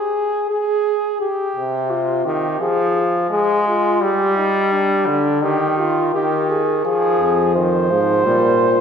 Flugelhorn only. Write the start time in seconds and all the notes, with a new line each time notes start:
Already playing: G#4
0.49 G#4
1.20 G4
1.90 F4
2.25 G4
2.61 G#4
3.31 G#4
3.67 F4
4.02 G4
4.37 D#4
4.71 D4
5.43 G4
5.78 F4
6.14 G4
6.50 G#4
6.85 G#4
7.55 C5